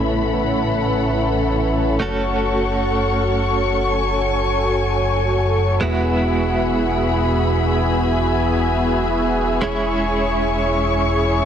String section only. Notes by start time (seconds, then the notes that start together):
Already playing: A4 C#5 B5
0.10 F#5
2.01 F#5 C#6
3.91 G#5
5.82 G#4 E5 F#5 B5
7.72 G#5
9.63 C#5 C#6